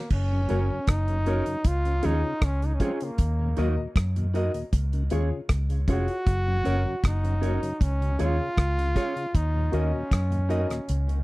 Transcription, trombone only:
0.13 0.91 C#4 medium
0.89 1.68 D#4 loud
1.67 2.07 F4 loud
2.05 2.46 D#4 loud
2.44 2.67 C#4 loud
2.66 2.76 D#4 medium
2.75 2.85 C#4 medium
2.83 2.95 C4 medium
2.93 3.06 C#4 medium
3.04 3.79 A#3 medium
5.92 7.01 F#4 loud
7.06 7.84 D#4 medium
7.82 8.22 C#4 loud
8.21 9.37 F4 loud
9.36 9.76 D#4 loud
9.74 11.24 C#4 medium

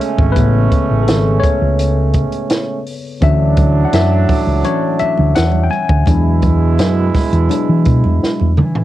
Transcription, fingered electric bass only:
0.19 0.34 G#1 medium
0.36 0.67 A1 loud
0.91 1.06 A1 medium
1.09 1.39 G#1 loud
1.62 2.23 C#2 medium
3.22 3.84 D2 loud
3.93 4.24 F#2 loud
4.47 4.62 C#2 loud
5.02 muted fingered electric bass stroke soft
5.19 5.34 D2 medium
5.38 5.68 E2 medium
5.90 6.05 D2 loud
6.08 6.79 E2 loud
6.79 7.10 F#2 medium
7.33 7.48 E2 loud
7.69 7.84 E3 loud
7.86 8.01 B2 medium
8.05 8.20 E2 medium
8.23 muted fingered electric bass stroke medium
8.41 8.60 E2 loud
8.59 8.84 E3 medium

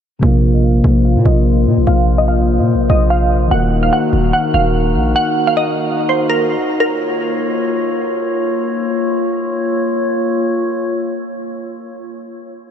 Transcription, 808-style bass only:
0.23 0.82 A#1 loud
0.84 1.17 A#1 loud
1.16 1.25 A#2 loud
1.25 1.68 A#1 loud
1.66 1.79 A#2 medium
1.77 1.87 A#1 loud
1.87 2.61 A#1 loud
2.60 2.76 A#2 loud
2.75 2.89 A#1 medium
2.90 3.49 A#1 loud
3.51 3.91 D#1 loud
4.13 4.33 D#1 loud
4.54 4.97 D#1 loud
4.95 5.15 A#1 medium

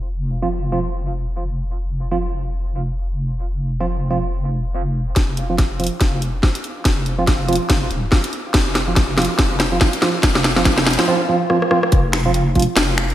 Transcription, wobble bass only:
0.00 5.14 F1 medium
5.16 5.90 F1 loud
6.01 6.42 F1 medium
6.85 7.59 F1 loud
7.70 7.89 F#1 loud
7.91 8.10 D#1 medium
8.54 9.28 F1 loud
9.39 9.80 F1 medium
10.23 10.97 F1 loud
11.92 12.67 F1 loud
12.77 13.14 F1 medium

